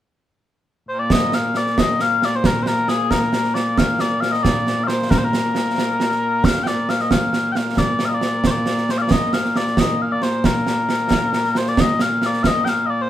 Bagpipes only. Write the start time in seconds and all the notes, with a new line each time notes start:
0.89 A#2 A#3 C5
0.99 D5
1.12 D#5
1.35 F5
1.57 D5
1.79 D#5
2.01 F5
2.25 D5
2.36 C5
2.46 A#4
2.63 C5
2.67 A#4
2.89 G#4
3.11 A#4
3.54 D5
3.78 F5
4.01 D5
4.21 F5
4.32 D#5
4.43 D5
4.84 C5 F5
5.10 A#4
5.18 C5
5.24 A#4
6.45 F5
6.63 D5 G5
6.90 F5
7.01 D#5
7.11 F5
7.52 F5 G5
7.78 D5
8.05 D#5 F5
8.14 D5
8.47 C5 D5
8.91 C5
8.98 D5 F5
9.11 D#5
9.34 F5
9.57 D5
9.79 D#5
10.02 F5
10.12 D5
10.23 C5
10.45 A#4
11.57 C5
11.69 D5
11.80 D#5
12.02 F5
12.26 D5
12.43 F5
12.47 D#5
12.65 G5
12.69 F5
12.86 D5 D#5
13.02 C5